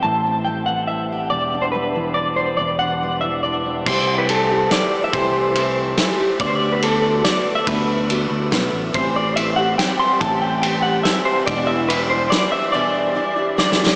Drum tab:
CC |---------|---------|---------|x--------|
RD |---------|---------|---------|---x--x--|
SD |---------|---------|---------|------o--|
BD |---------|---------|---------|o--------|

CC |---------|---------|---------|---------|
RD |x--x--x--|x--x--x--|x--x--x--|x--x--x--|
SD |------o--|------o--|------o--|------o--|
BD |o--------|o--------|o--------|o--------|

CC |---------|---------|---------|
RD |x--x--x--|x--x--x--|---------|
SD |------o--|------o--|------ooo|
BD |o--------|o--------|---------|